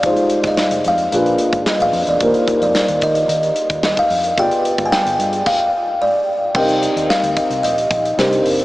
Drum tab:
CC |----------------|----------------|--------x-------|x---------------|
HH |xxxx-xxxxxxx-xox|xxxx-xxxxxxx-xox|xxxx-xxx--------|-xxx-xxxxxxx-xox|
SD |---oo-------o---|----o-------o---|----o-----------|----o-------o---|
BD |o--o-------o----|o-o---o----o-o--|o--o----o-------|o-----o---o-----|